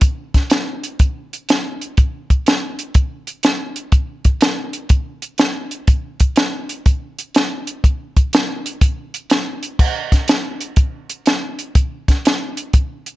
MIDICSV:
0, 0, Header, 1, 2, 480
1, 0, Start_track
1, 0, Tempo, 488998
1, 15, Time_signature, 4, 2, 24, 8
1, 12921, End_track
2, 0, Start_track
2, 0, Title_t, "Drums"
2, 11, Note_on_c, 9, 42, 81
2, 16, Note_on_c, 9, 36, 87
2, 109, Note_off_c, 9, 42, 0
2, 115, Note_off_c, 9, 36, 0
2, 337, Note_on_c, 9, 42, 54
2, 338, Note_on_c, 9, 36, 69
2, 353, Note_on_c, 9, 38, 28
2, 435, Note_off_c, 9, 42, 0
2, 436, Note_off_c, 9, 36, 0
2, 451, Note_off_c, 9, 38, 0
2, 490, Note_on_c, 9, 42, 70
2, 505, Note_on_c, 9, 38, 103
2, 588, Note_off_c, 9, 42, 0
2, 603, Note_off_c, 9, 38, 0
2, 820, Note_on_c, 9, 42, 54
2, 918, Note_off_c, 9, 42, 0
2, 976, Note_on_c, 9, 42, 69
2, 980, Note_on_c, 9, 36, 87
2, 1074, Note_off_c, 9, 42, 0
2, 1078, Note_off_c, 9, 36, 0
2, 1307, Note_on_c, 9, 42, 50
2, 1405, Note_off_c, 9, 42, 0
2, 1460, Note_on_c, 9, 42, 72
2, 1475, Note_on_c, 9, 38, 95
2, 1558, Note_off_c, 9, 42, 0
2, 1574, Note_off_c, 9, 38, 0
2, 1781, Note_on_c, 9, 42, 52
2, 1879, Note_off_c, 9, 42, 0
2, 1936, Note_on_c, 9, 42, 58
2, 1942, Note_on_c, 9, 36, 95
2, 2034, Note_off_c, 9, 42, 0
2, 2040, Note_off_c, 9, 36, 0
2, 2259, Note_on_c, 9, 42, 46
2, 2260, Note_on_c, 9, 36, 64
2, 2357, Note_off_c, 9, 42, 0
2, 2358, Note_off_c, 9, 36, 0
2, 2419, Note_on_c, 9, 42, 71
2, 2434, Note_on_c, 9, 38, 87
2, 2517, Note_off_c, 9, 42, 0
2, 2533, Note_off_c, 9, 38, 0
2, 2736, Note_on_c, 9, 42, 60
2, 2834, Note_off_c, 9, 42, 0
2, 2890, Note_on_c, 9, 42, 73
2, 2896, Note_on_c, 9, 36, 84
2, 2988, Note_off_c, 9, 42, 0
2, 2994, Note_off_c, 9, 36, 0
2, 3211, Note_on_c, 9, 42, 51
2, 3309, Note_off_c, 9, 42, 0
2, 3368, Note_on_c, 9, 42, 74
2, 3383, Note_on_c, 9, 38, 89
2, 3466, Note_off_c, 9, 42, 0
2, 3481, Note_off_c, 9, 38, 0
2, 3689, Note_on_c, 9, 42, 56
2, 3788, Note_off_c, 9, 42, 0
2, 3847, Note_on_c, 9, 42, 69
2, 3851, Note_on_c, 9, 36, 84
2, 3945, Note_off_c, 9, 42, 0
2, 3949, Note_off_c, 9, 36, 0
2, 4167, Note_on_c, 9, 42, 58
2, 4173, Note_on_c, 9, 36, 69
2, 4265, Note_off_c, 9, 42, 0
2, 4271, Note_off_c, 9, 36, 0
2, 4326, Note_on_c, 9, 42, 82
2, 4342, Note_on_c, 9, 38, 103
2, 4424, Note_off_c, 9, 42, 0
2, 4440, Note_off_c, 9, 38, 0
2, 4645, Note_on_c, 9, 42, 60
2, 4743, Note_off_c, 9, 42, 0
2, 4802, Note_on_c, 9, 42, 76
2, 4811, Note_on_c, 9, 36, 91
2, 4901, Note_off_c, 9, 42, 0
2, 4909, Note_off_c, 9, 36, 0
2, 5125, Note_on_c, 9, 42, 52
2, 5224, Note_off_c, 9, 42, 0
2, 5280, Note_on_c, 9, 42, 68
2, 5296, Note_on_c, 9, 38, 95
2, 5378, Note_off_c, 9, 42, 0
2, 5394, Note_off_c, 9, 38, 0
2, 5606, Note_on_c, 9, 42, 46
2, 5704, Note_off_c, 9, 42, 0
2, 5766, Note_on_c, 9, 42, 73
2, 5770, Note_on_c, 9, 36, 92
2, 5864, Note_off_c, 9, 42, 0
2, 5868, Note_off_c, 9, 36, 0
2, 6083, Note_on_c, 9, 42, 54
2, 6091, Note_on_c, 9, 36, 67
2, 6181, Note_off_c, 9, 42, 0
2, 6189, Note_off_c, 9, 36, 0
2, 6241, Note_on_c, 9, 42, 74
2, 6257, Note_on_c, 9, 38, 98
2, 6340, Note_off_c, 9, 42, 0
2, 6355, Note_off_c, 9, 38, 0
2, 6570, Note_on_c, 9, 42, 54
2, 6668, Note_off_c, 9, 42, 0
2, 6730, Note_on_c, 9, 42, 64
2, 6733, Note_on_c, 9, 36, 83
2, 6829, Note_off_c, 9, 42, 0
2, 6831, Note_off_c, 9, 36, 0
2, 7053, Note_on_c, 9, 42, 53
2, 7152, Note_off_c, 9, 42, 0
2, 7210, Note_on_c, 9, 42, 70
2, 7226, Note_on_c, 9, 38, 90
2, 7308, Note_off_c, 9, 42, 0
2, 7324, Note_off_c, 9, 38, 0
2, 7531, Note_on_c, 9, 42, 49
2, 7629, Note_off_c, 9, 42, 0
2, 7695, Note_on_c, 9, 36, 82
2, 7696, Note_on_c, 9, 42, 71
2, 7793, Note_off_c, 9, 36, 0
2, 7795, Note_off_c, 9, 42, 0
2, 8015, Note_on_c, 9, 42, 54
2, 8016, Note_on_c, 9, 36, 71
2, 8113, Note_off_c, 9, 42, 0
2, 8114, Note_off_c, 9, 36, 0
2, 8177, Note_on_c, 9, 42, 77
2, 8193, Note_on_c, 9, 38, 106
2, 8275, Note_off_c, 9, 42, 0
2, 8291, Note_off_c, 9, 38, 0
2, 8499, Note_on_c, 9, 42, 64
2, 8597, Note_off_c, 9, 42, 0
2, 8651, Note_on_c, 9, 42, 80
2, 8653, Note_on_c, 9, 36, 102
2, 8749, Note_off_c, 9, 42, 0
2, 8751, Note_off_c, 9, 36, 0
2, 8972, Note_on_c, 9, 42, 52
2, 9070, Note_off_c, 9, 42, 0
2, 9127, Note_on_c, 9, 42, 77
2, 9143, Note_on_c, 9, 38, 87
2, 9225, Note_off_c, 9, 42, 0
2, 9241, Note_off_c, 9, 38, 0
2, 9450, Note_on_c, 9, 42, 55
2, 9548, Note_off_c, 9, 42, 0
2, 9612, Note_on_c, 9, 36, 90
2, 9613, Note_on_c, 9, 49, 82
2, 9710, Note_off_c, 9, 36, 0
2, 9711, Note_off_c, 9, 49, 0
2, 9934, Note_on_c, 9, 36, 72
2, 9935, Note_on_c, 9, 42, 51
2, 9951, Note_on_c, 9, 38, 27
2, 10032, Note_off_c, 9, 36, 0
2, 10034, Note_off_c, 9, 42, 0
2, 10049, Note_off_c, 9, 38, 0
2, 10089, Note_on_c, 9, 42, 77
2, 10104, Note_on_c, 9, 38, 100
2, 10187, Note_off_c, 9, 42, 0
2, 10203, Note_off_c, 9, 38, 0
2, 10410, Note_on_c, 9, 42, 56
2, 10509, Note_off_c, 9, 42, 0
2, 10565, Note_on_c, 9, 42, 69
2, 10571, Note_on_c, 9, 36, 91
2, 10663, Note_off_c, 9, 42, 0
2, 10669, Note_off_c, 9, 36, 0
2, 10891, Note_on_c, 9, 42, 57
2, 10989, Note_off_c, 9, 42, 0
2, 11050, Note_on_c, 9, 42, 77
2, 11066, Note_on_c, 9, 38, 88
2, 11148, Note_off_c, 9, 42, 0
2, 11164, Note_off_c, 9, 38, 0
2, 11374, Note_on_c, 9, 42, 61
2, 11472, Note_off_c, 9, 42, 0
2, 11535, Note_on_c, 9, 42, 76
2, 11537, Note_on_c, 9, 36, 98
2, 11633, Note_off_c, 9, 42, 0
2, 11635, Note_off_c, 9, 36, 0
2, 11861, Note_on_c, 9, 36, 67
2, 11861, Note_on_c, 9, 42, 56
2, 11876, Note_on_c, 9, 38, 30
2, 11959, Note_off_c, 9, 36, 0
2, 11959, Note_off_c, 9, 42, 0
2, 11974, Note_off_c, 9, 38, 0
2, 12028, Note_on_c, 9, 42, 84
2, 12043, Note_on_c, 9, 38, 102
2, 12126, Note_off_c, 9, 42, 0
2, 12141, Note_off_c, 9, 38, 0
2, 12340, Note_on_c, 9, 42, 63
2, 12439, Note_off_c, 9, 42, 0
2, 12500, Note_on_c, 9, 42, 77
2, 12503, Note_on_c, 9, 36, 86
2, 12598, Note_off_c, 9, 42, 0
2, 12601, Note_off_c, 9, 36, 0
2, 12822, Note_on_c, 9, 42, 53
2, 12920, Note_off_c, 9, 42, 0
2, 12921, End_track
0, 0, End_of_file